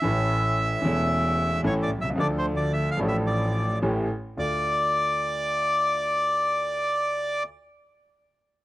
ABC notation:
X:1
M:4/4
L:1/16
Q:1/4=111
K:Dm
V:1 name="Bandoneon"
e12 (3^c2 d2 e2 | (3d2 c2 d2 (3e2 f2 e2 d4 z4 | d16- | d16 |]
V:2 name="Grand piano" clef=bass
[A,,,A,,E,A,^CA]6 [E,,,E,,E,A,CA]6 [A,,,A,,E,A,CA]2 z/2 =B,,,/2 =C,,/2 ^C,,/2 | [D,,D,F,A,DA]6 [A,,,A,,F,A,DA]6 [A,,,A,,E,A,^CG]2 z2 | [D,,A,DF]16- | [D,,A,DF]16 |]
V:3 name="Double bass" clef=bass
A,,,6 E,,,6 A,,,2 C,,2 | D,,6 A,,,6 A,,,2 z2 | D,,2 z12 z2 | z16 |]